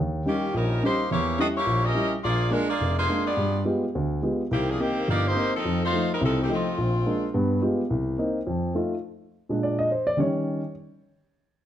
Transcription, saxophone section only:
0.28 0.53 D#3 medium
0.28 0.53 A#3 medium
0.28 0.53 C#4 medium
0.28 0.53 G4 medium
0.56 0.83 G3 medium
0.56 0.83 C#4 medium
0.56 0.83 D#4 medium
0.56 0.83 A#4 medium
0.85 1.10 A#3 medium
0.85 1.10 D#4 medium
0.85 1.10 G4 medium
0.85 1.10 C5 medium
1.12 1.38 A#3 medium
1.12 1.38 E4 medium
1.12 1.38 G4 medium
1.12 1.38 C#5 medium
1.41 1.48 C4 medium
1.41 1.48 F#4 medium
1.41 1.48 A4 medium
1.41 1.48 D#5 loud
1.57 1.83 A#3 medium
1.57 1.83 E4 medium
1.57 1.83 G4 medium
1.57 1.83 C#5 loud
1.85 2.13 C#4 medium
1.85 2.13 G4 medium
1.85 2.13 A#4 medium
1.85 2.13 D#5 loud
2.24 2.50 A#3 medium
2.24 2.50 F4 medium
2.24 2.51 G#4 medium
2.24 2.50 D5 loud
2.52 2.69 G#3 medium
2.52 2.69 D4 medium
2.52 2.68 F4 medium
2.52 2.69 A#4 medium
2.69 2.96 A#3 medium
2.69 2.96 F4 medium
2.69 2.96 G#4 medium
2.69 2.96 D5 medium
2.98 3.25 A#3 medium
2.98 3.25 F4 medium
2.98 3.24 G#4 medium
2.98 3.24 C5 medium
3.27 3.63 B3 medium
3.27 3.63 F4 medium
3.27 3.63 G#4 medium
3.27 3.64 D5 medium
4.53 4.68 D#3 medium
4.53 4.68 A#3 medium
4.53 4.68 C4 medium
4.53 4.68 G4 medium
4.70 4.80 F3 medium
4.70 4.80 A#3 medium
4.70 4.80 D4 medium
4.70 4.80 G#4 medium
4.81 5.09 D#3 medium
4.81 5.09 A#3 medium
4.81 5.09 C4 medium
4.81 5.09 G4 medium
5.10 5.25 A#3 medium
5.10 5.25 D#4 medium
5.10 5.25 G4 medium
5.10 5.25 D5 loud
5.27 5.54 A#3 medium
5.27 5.54 D#4 medium
5.27 5.54 G4 medium
5.27 5.54 C5 loud
5.56 5.81 F3 medium
5.56 5.81 C4 medium
5.56 5.81 D#4 medium
5.56 5.81 A4 medium
5.85 6.10 A3 medium
5.85 6.10 D#4 medium
5.85 6.10 F4 medium
5.85 6.10 C5 medium
6.14 6.23 G3 medium
6.14 6.23 C4 medium
6.14 6.23 D#4 medium
6.14 6.23 A#4 medium
6.25 6.39 F3 medium
6.25 6.39 C4 medium
6.25 6.39 D#4 medium
6.25 6.39 A4 medium
6.43 6.52 D#3 medium
6.43 6.52 A3 medium
6.43 6.52 C4 medium
6.43 6.52 G4 medium
6.54 6.78 A3 medium
6.54 7.32 C4 medium
6.54 6.78 D#4 medium
6.54 7.33 F4 medium

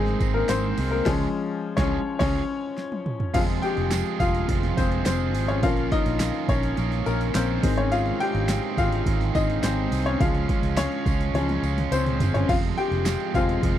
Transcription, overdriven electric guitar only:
0.00 0.20 G#3 medium
0.00 0.21 C4 medium
0.00 0.20 D#4 medium
0.00 0.18 G#4 medium
0.20 0.48 G#3 soft
0.20 0.49 C4 soft
0.20 0.49 D#4 medium
0.20 0.49 G#4 medium
0.49 0.77 G#2 medium
0.49 0.78 D#3 medium
0.49 0.78 G#3 medium
0.49 0.78 C4 medium
0.49 0.77 D#4 medium
0.49 0.76 G#4 medium
0.77 1.06 G#3 soft
0.77 1.06 C4 medium
0.77 1.06 D#4 soft
0.77 1.06 G#4 medium
1.06 1.25 C#3 loud
1.06 1.26 F3 medium
1.06 1.26 G#3 medium
1.06 1.26 F4 loud
1.06 1.27 G#4 medium
1.77 1.97 C#3 medium
1.77 1.97 F3 loud
1.77 1.98 G#3 loud
1.77 1.98 F4 medium
1.77 1.98 G#4 medium
2.20 2.39 F3 loud
2.20 2.40 G#3 medium
2.20 2.41 F4 loud
2.20 2.41 G#4 loud
3.34 3.63 F2 medium
3.34 3.63 C3 medium
3.34 3.64 F3 medium
3.34 3.63 G#3 medium
3.34 3.62 F4 loud
3.34 3.61 G#4 loud
3.62 3.89 F3 soft
3.62 3.91 G#3 medium
3.62 3.92 F4 medium
3.62 3.91 G#4 medium
3.90 4.20 F3 medium
3.90 4.20 G#3 medium
3.90 4.19 F4 medium
3.90 4.18 G#4 medium
4.19 4.48 F3 soft
4.19 4.48 G#3 soft
4.19 4.49 F4 soft
4.19 4.48 G#4 medium
4.48 4.77 F2 medium
4.48 4.77 C3 medium
4.48 4.78 F3 medium
4.48 4.77 G#3 medium
4.48 4.76 F4 medium
4.48 4.75 G#4 medium
4.76 5.04 F3 medium
4.76 5.05 G#3 medium
4.76 5.06 F4 medium
4.76 5.05 G#4 medium
5.05 5.34 F3 medium
5.05 5.35 G#3 medium
5.05 5.34 F4 medium
5.05 5.32 G#4 medium
5.34 5.62 F3 soft
5.34 5.63 G#3 soft
5.34 5.63 F4 medium
5.34 5.63 G#4 medium
5.62 5.91 A#2 medium
5.62 5.92 F3 medium
5.62 5.92 C#4 medium
5.62 5.92 F4 loud
5.62 5.90 A#4 medium
5.91 6.19 C#4 medium
5.91 6.20 F4 medium
5.91 6.20 A#4 medium
6.19 6.48 F3 medium
6.19 6.49 C#4 medium
6.19 6.49 F4 medium
6.19 6.47 A#4 medium
6.48 6.77 C#4 soft
6.48 6.77 F4 soft
6.48 6.77 A#4 medium
6.77 7.06 A#2 medium
6.77 7.06 F3 medium
6.77 7.06 C#4 medium
6.77 7.06 F4 loud
6.77 7.04 A#4 loud
7.05 7.34 C#4 medium
7.05 7.35 F4 medium
7.05 7.34 A#4 medium
7.34 7.63 F3 medium
7.34 7.63 C#4 medium
7.34 7.64 F4 medium
7.34 7.62 A#4 medium
7.63 7.91 G#3 soft
7.63 7.92 C4 medium
7.63 7.92 D#4 medium
7.63 7.92 G#4 medium
7.91 8.20 G#2 loud
7.91 8.21 D#3 loud
7.91 8.21 G#3 loud
7.91 8.21 C4 loud
7.91 8.20 D#4 medium
7.91 8.18 G#4 loud
8.20 8.47 G#3 medium
8.20 8.49 C4 medium
8.20 8.49 D#4 medium
8.20 8.49 G#4 medium
8.48 8.77 G#3 medium
8.48 8.78 C4 medium
8.48 8.77 D#4 medium
8.48 8.76 G#4 medium
8.77 9.06 G#3 soft
8.77 9.06 C4 soft
8.77 9.06 D#4 medium
8.77 9.06 G#4 medium
9.06 9.34 G#2 medium
9.06 9.35 D#3 medium
9.06 9.35 G#3 loud
9.06 9.35 C4 loud
9.06 9.35 D#4 medium
9.06 9.33 G#4 medium
9.34 9.61 G#3 soft
9.34 9.63 C4 medium
9.34 9.64 D#4 medium
9.34 9.63 G#4 medium
9.63 9.92 G#3 medium
9.63 9.92 C4 medium
9.63 9.91 D#4 medium
9.63 9.90 G#4 medium
9.91 10.20 G#3 soft
9.91 10.21 C4 soft
9.91 10.21 D#4 medium
9.91 10.20 G#4 medium
10.20 10.49 C#3 medium
10.20 10.49 F3 loud
10.20 10.49 G#3 medium
10.20 10.49 C#4 medium
10.20 10.47 F4 loud
10.48 10.77 G#3 soft
10.48 10.78 C#4 medium
10.48 10.77 F4 medium
10.77 11.06 F3 medium
10.77 11.06 G#3 medium
10.77 11.06 C#4 medium
10.77 11.04 F4 medium
11.06 11.35 G#3 soft
11.06 11.35 C#4 medium
11.06 11.34 F4 medium
11.35 11.63 C#3 medium
11.35 11.63 F3 loud
11.35 11.64 G#3 medium
11.35 11.63 C#4 medium
11.35 11.61 F4 loud
11.63 11.91 G#3 soft
11.63 11.92 C#4 medium
11.63 11.91 F4 medium
11.91 12.20 F3 medium
11.91 12.21 G#3 medium
11.91 12.20 C#4 medium
11.91 12.18 F4 medium
12.20 12.49 G#3 soft
12.20 12.49 C#4 medium
12.20 12.48 F4 medium
12.48 12.77 F2 medium
12.48 12.77 C3 medium
12.48 12.78 F3 loud
12.48 12.78 G#3 medium
12.48 12.77 C4 medium
12.48 12.76 F4 loud
12.77 13.04 F3 medium
12.77 13.05 G#3 soft
12.77 13.06 C4 medium
12.77 13.06 F4 medium
13.05 13.34 F3 medium
13.05 13.35 G#3 medium
13.05 13.34 C4 medium
13.05 13.33 F4 medium
13.34 13.63 F3 soft
13.34 13.63 G#3 medium
13.34 13.63 C4 medium
13.34 13.63 F4 medium
13.63 13.79 F2 medium
13.63 13.79 C3 medium
13.63 13.79 F3 medium
13.63 13.79 G#3 medium
13.63 13.79 C4 medium
13.63 13.79 F4 loud

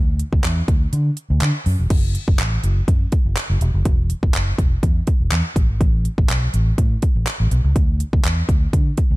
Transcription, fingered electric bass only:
0.00 0.21 D2 loud
0.33 0.40 D2 medium
0.44 0.61 E2 loud
0.68 0.85 D2 loud
0.93 1.09 D3 loud
1.30 1.38 D2 medium
1.42 1.50 D3 loud
1.66 1.75 F#2 medium
1.79 1.87 E1 medium
1.90 2.16 F#1 loud
2.28 2.36 F#1 medium
2.39 2.56 A1 loud
2.64 2.80 F#1 medium
2.88 3.04 F#2 loud
3.25 3.33 F#1 medium
3.50 3.57 F#1 medium
3.61 3.70 E1 medium
3.74 3.82 F#1 medium
3.85 4.11 E1 loud
4.23 4.31 E1 medium
4.34 4.51 F#1 loud
4.58 4.75 E1 medium
4.83 5.00 E2 loud
5.20 5.28 E1 medium
5.32 5.41 E2 loud
5.56 5.65 A1 loud
5.69 5.77 G#1 medium
5.81 6.06 A1 loud
6.18 6.26 A1 medium
6.29 6.46 B1 loud
6.54 6.70 A1 medium
6.78 6.95 A2 loud
7.16 7.23 A1 loud
7.40 7.48 A1 medium
7.51 7.60 B1 loud
7.64 7.72 C#2 medium
7.76 8.01 D2 loud
8.13 8.21 D2 medium
8.24 8.41 E2 medium
8.49 8.65 D2 loud
8.73 8.90 D3 loud
9.11 9.17 D2 medium

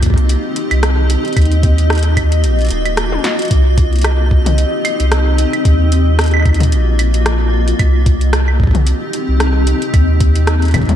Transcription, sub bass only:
0.00 0.36 C2 medium
0.71 1.17 C2 medium
1.37 2.45 D#2 loud
2.44 2.70 A#1 medium
2.70 3.18 D#1 medium
3.51 4.65 C2 loud
5.00 5.45 C2 medium
5.65 6.74 D#2 loud
6.72 7.73 A#1 medium
7.79 8.93 C2 medium
9.28 9.74 C2 medium
9.94 10.94 D#2 loud

